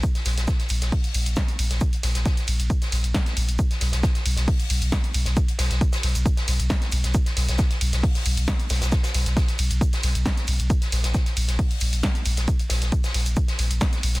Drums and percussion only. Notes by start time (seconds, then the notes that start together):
0.03 kick, closed hi-hat, shaker
0.15 snare, closed hi-hat
0.25 snare, open hi-hat, ride, shaker
0.38 snare, closed hi-hat
0.47 kick, snare, closed hi-hat, shaker
0.59 snare, closed hi-hat
0.69 open hi-hat, ride, shaker
0.82 snare, closed hi-hat
0.92 kick, closed hi-hat, open hi-hat
1.04 closed hi-hat
1.14 open hi-hat, ride, shaker
1.26 closed hi-hat
1.36 kick, snare, closed hi-hat, shaker
1.48 closed hi-hat
1.59 open hi-hat, ride, shaker
1.71 snare, closed hi-hat
1.81 kick, closed hi-hat, shaker
1.93 closed hi-hat
2.03 snare, open hi-hat, ride, shaker
2.15 snare, closed hi-hat
2.25 kick, snare, closed hi-hat, shaker
2.37 snare, closed hi-hat
2.48 open hi-hat, ride, shaker
2.60 closed hi-hat
2.70 kick, closed hi-hat, shaker
2.82 snare, closed hi-hat
2.92 snare, open hi-hat, ride, shaker
3.04 closed hi-hat
3.14 kick, snare, closed hi-hat, shaker
3.26 snare, closed hi-hat
3.37 open hi-hat, ride, shaker
3.49 closed hi-hat
3.59 kick, closed hi-hat, shaker
3.71 snare, closed hi-hat
3.81 snare, open hi-hat, ride, shaker
3.92 snare, closed hi-hat
4.03 kick, snare, closed hi-hat, shaker
4.15 snare, closed hi-hat
4.26 open hi-hat, ride, shaker
4.36 snare, closed hi-hat
4.48 kick, closed hi-hat, open hi-hat
4.60 closed hi-hat
4.70 open hi-hat, ride, shaker
4.82 closed hi-hat
4.92 kick, snare, closed hi-hat, shaker
5.04 closed hi-hat
5.14 open hi-hat, ride, shaker
5.25 snare, closed hi-hat
5.37 kick, closed hi-hat, shaker
5.48 closed hi-hat
5.59 snare, open hi-hat, ride, shaker
5.71 snare, closed hi-hat
5.81 kick, closed hi-hat, shaker
5.93 snare, closed hi-hat, shaker
6.03 snare, open hi-hat, ride
6.15 closed hi-hat, shaker
6.26 kick, closed hi-hat, shaker
6.37 snare, closed hi-hat
6.48 snare, open hi-hat, ride, shaker
6.60 closed hi-hat
6.70 kick, snare, closed hi-hat, shaker
6.81 snare, closed hi-hat
6.92 open hi-hat, ride, shaker
7.04 snare, closed hi-hat
7.14 kick, closed hi-hat, shaker
7.26 snare, closed hi-hat
7.36 snare, open hi-hat, ride, shaker
7.49 snare, closed hi-hat
7.58 kick, snare, closed hi-hat, shaker
7.71 snare, closed hi-hat
7.81 open hi-hat, ride, shaker
7.93 snare, closed hi-hat
8.03 kick, closed hi-hat, open hi-hat
8.15 snare, closed hi-hat
8.25 open hi-hat, ride, shaker
8.37 closed hi-hat
8.48 kick, snare, closed hi-hat, shaker
8.60 closed hi-hat
8.70 snare, open hi-hat, ride, shaker
8.82 snare, closed hi-hat, shaker
8.92 kick, snare, closed hi-hat, shaker
9.03 snare, closed hi-hat, shaker
9.14 snare, open hi-hat, ride, shaker
9.26 snare, closed hi-hat
9.37 kick, snare, closed hi-hat, shaker
9.48 snare, closed hi-hat
9.59 open hi-hat, ride, shaker
9.71 closed hi-hat
9.81 kick, closed hi-hat, shaker
9.93 snare, closed hi-hat
10.03 snare, open hi-hat, ride, shaker
10.15 closed hi-hat
10.26 kick, snare, closed hi-hat, shaker
10.37 snare, closed hi-hat
10.47 open hi-hat, ride, shaker
10.60 closed hi-hat
10.70 kick, closed hi-hat, shaker
10.82 snare, closed hi-hat
10.92 snare, open hi-hat, ride, shaker
11.04 snare, closed hi-hat
11.14 kick, snare, closed hi-hat, shaker
11.26 snare, closed hi-hat
11.37 open hi-hat, ride, shaker
11.48 snare, closed hi-hat
11.59 kick, closed hi-hat, open hi-hat
11.71 closed hi-hat
11.80 open hi-hat, ride, shaker
11.93 closed hi-hat
12.03 kick, snare, closed hi-hat, shaker
12.15 closed hi-hat
12.25 open hi-hat, ride, shaker
12.37 snare, closed hi-hat
12.48 kick, closed hi-hat, shaker
12.59 closed hi-hat
12.70 snare, open hi-hat, ride, shaker
12.82 snare, closed hi-hat
12.92 kick, closed hi-hat, shaker
13.04 snare, closed hi-hat, shaker
13.14 snare, open hi-hat, ride
13.26 closed hi-hat, shaker
13.36 kick, closed hi-hat, shaker
13.48 snare, closed hi-hat
13.59 snare, open hi-hat, ride, shaker
13.71 closed hi-hat
13.81 kick, snare, closed hi-hat, shaker
13.93 snare, closed hi-hat
14.03 open hi-hat, ride, shaker
14.15 snare, closed hi-hat